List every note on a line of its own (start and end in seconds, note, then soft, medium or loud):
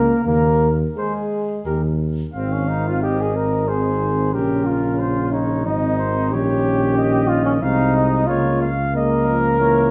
0.00 0.15 C#2 medium
0.00 0.25 A#3 medium
0.00 0.26 A#4 medium
0.25 0.85 D#2 medium
0.25 0.70 A#3 medium
0.25 0.71 A#4 medium
0.97 1.62 G#3 medium
0.97 1.62 G#4 medium
0.97 1.13 G#4 medium
0.97 1.14 C5 soft
1.65 2.23 D#2 medium
1.65 1.82 G4 soft
1.65 1.81 A#4 soft
2.34 4.35 G#1 soft
2.34 3.63 D#3 soft
2.34 2.54 C4 medium
2.34 3.64 C4 soft
2.34 3.04 F5 medium
2.52 2.70 C#4 soft
2.68 2.89 D#4 soft
2.87 3.02 F4 medium
3.03 3.21 G4 medium
3.03 3.69 D#5 soft
3.20 3.37 G#4 medium
3.36 3.70 A#4 medium
3.67 4.35 D#3 soft
3.67 4.35 C4 soft
3.67 4.33 G#4 soft
3.67 4.35 C5 soft
4.33 5.67 A#1 soft
4.33 5.67 C#3 soft
4.33 5.65 C#4 soft
4.33 4.65 G4 medium
4.33 5.00 A#4 soft
4.65 5.34 F4 medium
4.99 5.31 C5 soft
5.32 5.65 D#4 medium
5.32 5.67 C#5 soft
5.65 6.33 G#1 soft
5.65 6.31 D#3 soft
5.65 6.34 C4 soft
5.65 6.30 D#4 medium
5.65 5.99 D#5 medium
5.99 6.34 C5 soft
6.31 7.61 A#1 medium
6.31 7.64 D#3 soft
6.31 7.61 C#4 soft
6.31 7.29 G4 medium
6.31 6.96 C#5 medium
6.97 7.64 D#5 medium
7.28 7.45 F4 medium
7.45 7.53 C#4 medium
7.61 8.29 C2 medium
7.61 8.27 G#3 soft
7.61 8.26 C4 soft
7.61 8.28 D#4 medium
7.61 7.95 F5 medium
7.96 8.27 D#5 medium
8.27 9.91 C#2 medium
8.27 8.70 G#3 soft
8.27 8.70 A#3 soft
8.27 8.70 F4 medium
8.27 8.60 C#5 medium
8.62 8.94 F5 medium
8.94 9.29 G#3 medium
8.94 9.56 A#3 medium
8.94 9.91 A#4 medium
8.94 9.37 D#5 medium
9.27 9.61 F3 medium
9.60 9.91 E3 medium
9.60 9.91 A#3 medium
9.60 9.91 C#5 medium